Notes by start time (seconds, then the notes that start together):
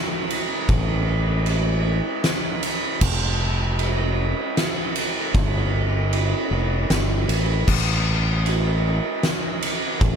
0.30 ride
0.69 A1, kick, ride
1.46 ride
2.24 snare, ride
2.63 ride
3.01 F1, kick, crash
3.79 ride
4.57 snare, ride
4.96 ride
5.34 G1, kick, ride
6.13 ride
6.51 F1
6.90 G1, snare, ride
7.29 A1, ride
7.68 A1, kick, crash
8.46 ride
9.23 snare, ride
9.62 ride
10.01 A1, kick, ride